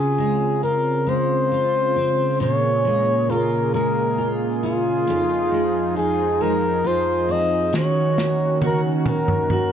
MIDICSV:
0, 0, Header, 1, 5, 480
1, 0, Start_track
1, 0, Key_signature, -5, "major"
1, 0, Tempo, 887574
1, 1296, Time_signature, 6, 3, 24, 8
1, 5257, End_track
2, 0, Start_track
2, 0, Title_t, "Flugelhorn"
2, 0, Program_c, 0, 56
2, 0, Note_on_c, 0, 68, 56
2, 320, Note_off_c, 0, 68, 0
2, 343, Note_on_c, 0, 70, 58
2, 587, Note_on_c, 0, 72, 66
2, 595, Note_off_c, 0, 70, 0
2, 1302, Note_off_c, 0, 72, 0
2, 1308, Note_on_c, 0, 73, 63
2, 1787, Note_on_c, 0, 70, 61
2, 1795, Note_off_c, 0, 73, 0
2, 2022, Note_off_c, 0, 70, 0
2, 2028, Note_on_c, 0, 70, 69
2, 2335, Note_off_c, 0, 70, 0
2, 2509, Note_on_c, 0, 65, 75
2, 3202, Note_off_c, 0, 65, 0
2, 3230, Note_on_c, 0, 68, 65
2, 3470, Note_on_c, 0, 70, 75
2, 3478, Note_off_c, 0, 68, 0
2, 3713, Note_on_c, 0, 72, 71
2, 3721, Note_off_c, 0, 70, 0
2, 3955, Note_on_c, 0, 75, 72
2, 3963, Note_off_c, 0, 72, 0
2, 4186, Note_off_c, 0, 75, 0
2, 4204, Note_on_c, 0, 73, 66
2, 4649, Note_off_c, 0, 73, 0
2, 4680, Note_on_c, 0, 70, 51
2, 4766, Note_off_c, 0, 70, 0
2, 4916, Note_on_c, 0, 70, 59
2, 5257, Note_off_c, 0, 70, 0
2, 5257, End_track
3, 0, Start_track
3, 0, Title_t, "Analog synth pad"
3, 0, Program_c, 1, 89
3, 0, Note_on_c, 1, 49, 65
3, 0, Note_on_c, 1, 60, 60
3, 0, Note_on_c, 1, 65, 72
3, 1279, Note_off_c, 1, 60, 0
3, 1281, Note_off_c, 1, 65, 0
3, 1292, Note_on_c, 1, 58, 60
3, 1294, Note_on_c, 1, 68, 67
3, 2713, Note_off_c, 1, 49, 0
3, 2721, Note_off_c, 1, 58, 0
3, 2734, Note_on_c, 1, 63, 59
3, 2738, Note_on_c, 1, 53, 60
3, 4154, Note_off_c, 1, 68, 0
3, 4161, Note_off_c, 1, 63, 0
3, 4163, Note_off_c, 1, 53, 0
3, 4178, Note_on_c, 1, 51, 71
3, 4178, Note_on_c, 1, 61, 58
3, 4178, Note_on_c, 1, 66, 73
3, 5257, Note_off_c, 1, 51, 0
3, 5257, Note_off_c, 1, 61, 0
3, 5257, Note_off_c, 1, 66, 0
3, 5257, End_track
4, 0, Start_track
4, 0, Title_t, "Steel-string acoustic guitar"
4, 0, Program_c, 2, 25
4, 0, Note_on_c, 2, 49, 58
4, 0, Note_on_c, 2, 61, 35
4, 0, Note_on_c, 2, 65, 45
4, 99, Note_on_c, 2, 56, 39
4, 339, Note_off_c, 2, 65, 0
4, 341, Note_on_c, 2, 65, 40
4, 574, Note_off_c, 2, 56, 0
4, 576, Note_on_c, 2, 56, 37
4, 819, Note_off_c, 2, 65, 0
4, 821, Note_on_c, 2, 65, 44
4, 1059, Note_off_c, 2, 61, 0
4, 1061, Note_on_c, 2, 60, 41
4, 1296, Note_off_c, 2, 49, 0
4, 1298, Note_on_c, 2, 46, 53
4, 1300, Note_off_c, 2, 65, 0
4, 1302, Note_on_c, 2, 65, 46
4, 1347, Note_off_c, 2, 60, 0
4, 1538, Note_off_c, 2, 56, 0
4, 1540, Note_on_c, 2, 56, 41
4, 1780, Note_off_c, 2, 65, 0
4, 1782, Note_on_c, 2, 65, 43
4, 2020, Note_off_c, 2, 56, 0
4, 2022, Note_on_c, 2, 56, 42
4, 2258, Note_off_c, 2, 65, 0
4, 2260, Note_on_c, 2, 65, 44
4, 2504, Note_on_c, 2, 61, 45
4, 2738, Note_off_c, 2, 46, 0
4, 2743, Note_on_c, 2, 41, 60
4, 2744, Note_off_c, 2, 65, 0
4, 2746, Note_on_c, 2, 65, 51
4, 2788, Note_off_c, 2, 61, 0
4, 2981, Note_off_c, 2, 56, 0
4, 2983, Note_on_c, 2, 56, 41
4, 3219, Note_off_c, 2, 65, 0
4, 3225, Note_on_c, 2, 65, 44
4, 3460, Note_off_c, 2, 56, 0
4, 3466, Note_on_c, 2, 56, 40
4, 3695, Note_off_c, 2, 65, 0
4, 3701, Note_on_c, 2, 65, 44
4, 3940, Note_on_c, 2, 60, 41
4, 4178, Note_on_c, 2, 51, 61
4, 4179, Note_off_c, 2, 65, 0
4, 4180, Note_off_c, 2, 41, 0
4, 4182, Note_on_c, 2, 66, 50
4, 4226, Note_off_c, 2, 60, 0
4, 4229, Note_off_c, 2, 56, 0
4, 4421, Note_on_c, 2, 58, 40
4, 4652, Note_off_c, 2, 66, 0
4, 4658, Note_on_c, 2, 66, 47
4, 4893, Note_off_c, 2, 58, 0
4, 4899, Note_on_c, 2, 58, 41
4, 5132, Note_off_c, 2, 66, 0
4, 5139, Note_on_c, 2, 66, 45
4, 5257, Note_off_c, 2, 51, 0
4, 5257, Note_off_c, 2, 58, 0
4, 5257, Note_off_c, 2, 66, 0
4, 5257, End_track
5, 0, Start_track
5, 0, Title_t, "Drums"
5, 4186, Note_on_c, 9, 38, 40
5, 4240, Note_off_c, 9, 38, 0
5, 4425, Note_on_c, 9, 38, 43
5, 4479, Note_off_c, 9, 38, 0
5, 4660, Note_on_c, 9, 48, 49
5, 4714, Note_off_c, 9, 48, 0
5, 4898, Note_on_c, 9, 47, 59
5, 4952, Note_off_c, 9, 47, 0
5, 5019, Note_on_c, 9, 45, 58
5, 5073, Note_off_c, 9, 45, 0
5, 5138, Note_on_c, 9, 45, 67
5, 5192, Note_off_c, 9, 45, 0
5, 5257, End_track
0, 0, End_of_file